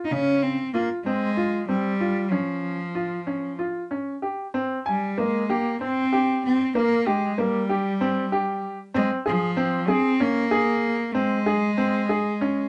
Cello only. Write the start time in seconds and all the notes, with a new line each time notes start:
0.05 D#4
0.12 C#4
0.43 C4
0.74 A#3
1.04 G#3
1.68 G3
2.31 F3
4.86 G3
5.18 G#3
5.50 A#3
5.81 C4
6.45 C4
6.76 A#3
7.08 G#3
7.40 G3
8.96 G#3
9.28 F3
9.89 C4
10.21 A#3
11.15 G#3